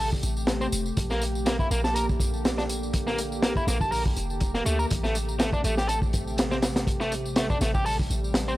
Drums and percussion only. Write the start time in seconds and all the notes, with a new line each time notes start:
0.12 kick, tambourine
0.23 closed hi-hat, tambourine
0.37 tambourine
0.47 snare, closed hi-hat, tambourine
0.61 tambourine
0.72 closed hi-hat, tambourine
0.86 tambourine
0.97 kick, closed hi-hat, tambourine
1.10 snare, tambourine
1.22 closed hi-hat, tambourine
1.35 tambourine
1.46 snare, closed hi-hat, tambourine
1.59 kick, tambourine
1.71 closed hi-hat, tambourine
1.84 snare, tambourine
1.96 closed hi-hat, tambourine
2.09 kick, tambourine
2.20 kick, closed hi-hat, tambourine
2.34 tambourine
2.45 snare, closed hi-hat, tambourine
2.58 snare, tambourine
2.69 closed hi-hat, tambourine
2.83 tambourine
2.93 kick, closed hi-hat, tambourine
3.08 snare, tambourine
3.18 closed hi-hat, tambourine
3.32 tambourine
3.43 snare, closed hi-hat, tambourine
3.56 kick, tambourine
3.68 snare, closed hi-hat, tambourine
3.81 kick, tambourine
3.92 open hi-hat, tambourine
4.05 kick, tambourine
4.16 closed hi-hat, tambourine
4.30 tambourine
4.40 kick, closed hi-hat, tambourine
4.54 snare, tambourine
4.66 closed hi-hat, tambourine
4.79 tambourine
4.90 kick, closed hi-hat, tambourine
5.04 snare, tambourine
5.15 closed hi-hat, tambourine
5.29 tambourine
5.39 snare, closed hi-hat, tambourine
5.53 kick, tambourine
5.64 closed hi-hat, tambourine
5.77 snare, tambourine
5.89 closed hi-hat, tambourine
6.02 kick, tambourine
6.13 kick, closed hi-hat, tambourine
6.27 tambourine
6.38 snare, closed hi-hat, tambourine
6.52 snare, tambourine
6.62 snare, closed hi-hat, tambourine
6.76 snare, closed hi-hat, tambourine
6.87 kick, closed hi-hat, tambourine
7.01 snare, tambourine
7.12 closed hi-hat, tambourine
7.25 tambourine
7.36 snare, closed hi-hat, tambourine
7.50 kick, tambourine
7.61 snare, closed hi-hat, tambourine
7.74 kick, tambourine
7.86 open hi-hat, tambourine
7.99 kick, tambourine
8.11 closed hi-hat, tambourine
8.24 tambourine
8.34 snare, closed hi-hat, tambourine
8.48 tambourine